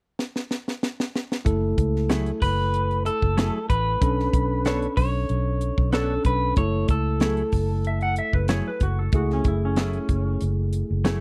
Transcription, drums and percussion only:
0.19 snare
0.36 snare
0.51 snare
0.68 snare
0.83 snare
1.00 snare
1.16 snare
1.32 snare
1.46 kick, closed hi-hat
1.78 kick, closed hi-hat
1.96 snare
2.10 snare, closed hi-hat
2.26 closed hi-hat
2.42 kick, open hi-hat
2.74 closed hi-hat
2.91 closed hi-hat
3.06 closed hi-hat
3.22 kick
3.38 snare, closed hi-hat
3.70 kick, closed hi-hat
4.02 kick, closed hi-hat
4.20 snare
4.33 kick, closed hi-hat
4.65 snare, closed hi-hat
4.82 closed hi-hat
4.97 kick, open hi-hat
5.29 closed hi-hat
5.61 closed hi-hat
5.78 kick
5.93 snare, closed hi-hat
6.25 kick, closed hi-hat
6.56 kick, closed hi-hat
6.88 kick, closed hi-hat
7.20 snare, closed hi-hat
7.37 closed hi-hat
7.52 kick, open hi-hat
7.85 closed hi-hat
8.01 closed hi-hat
8.16 closed hi-hat
8.33 kick
8.48 snare, closed hi-hat
8.80 kick, closed hi-hat
9.12 kick, closed hi-hat
9.30 snare
9.44 kick, closed hi-hat
9.76 snare, closed hi-hat
9.93 closed hi-hat
10.09 kick, closed hi-hat
10.41 closed hi-hat
10.73 closed hi-hat
11.05 snare, closed hi-hat

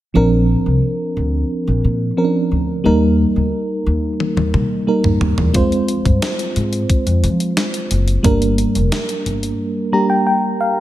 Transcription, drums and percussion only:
4.20 high tom
4.37 high tom
4.54 mid tom
5.04 mid tom
5.21 floor tom
5.38 floor tom
5.54 kick, closed hi-hat
5.72 closed hi-hat
5.88 closed hi-hat
6.06 kick, closed hi-hat
6.22 snare, closed hi-hat
6.39 closed hi-hat
6.56 closed hi-hat
6.73 closed hi-hat
6.90 kick, closed hi-hat
7.07 closed hi-hat
7.24 closed hi-hat
7.40 closed hi-hat
7.57 snare, closed hi-hat
7.74 closed hi-hat
7.91 closed hi-hat
8.08 closed hi-hat
8.24 kick, closed hi-hat
8.42 closed hi-hat
8.58 closed hi-hat
8.75 closed hi-hat
8.92 snare, closed hi-hat
9.09 closed hi-hat
9.26 closed hi-hat
9.43 closed hi-hat

